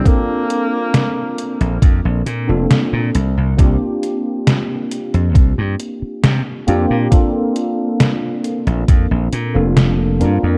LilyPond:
<<
  \new Staff \with { instrumentName = "Tine electric piano" } { \time 4/4 \key bes \major \tempo 4 = 68 <bes c' d' f' a'>2~ <bes c' d' f' a'>8. <bes c' d' f' a'>8. r8 | <bes c' d' f' g'>2.~ <bes c' d' f' g'>8 <bes c' d' f' g'>8 | <bes c' d' f' a'>2~ <bes c' d' f' a'>8. <bes c' d' f' a'>8. <bes c' d' f' bes'>16 r16 | }
  \new Staff \with { instrumentName = "Tenor saxophone" } { \time 4/4 \key bes \major bes2 r2 | r1 | r1 | }
  \new Staff \with { instrumentName = "Slap bass" } { \clef bass \time 4/4 \key bes \major r4. r16 bes,,16 f,16 bes,,16 bes,16 f,,16 r16 bes,16 c,16 c,16 | c,16 r4. f,16 c,16 g,16 r8 c16 r16 f,16 bes,16 | r4. r16 bes,,16 f,16 bes,,16 bes,16 f,,8. g,16 f,16 | }
  \new DrumStaff \with { instrumentName = "Drums" } \drummode { \time 4/4 <hh bd>8 hh8 <hh sn>8 hh16 hh16 <hh bd>8 hh8 <hh sn>8 hh8 | <hh bd>8 hh8 <hh sn>8 hh16 hh16 <hh bd>8 hh8 <hh sn>8 hh8 | <hh bd>8 hh8 <hh sn>8 hh16 hh16 <hh bd>8 hh8 <hh sn>8 hh8 | }
>>